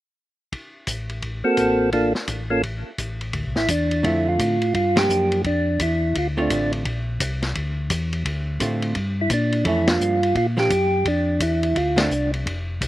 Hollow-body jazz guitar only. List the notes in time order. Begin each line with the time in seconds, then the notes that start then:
4.03 D3 A3 C4 F4
4.96 F3 A#3 D4
6.37 D3 A3 C4 F4
8.60 D3 A3 C4 F4
9.65 E3 A3 C#4
9.88 F3 A#3 D4
10.57 F3 A#3 D4
11.96 D3 A3 C4 F4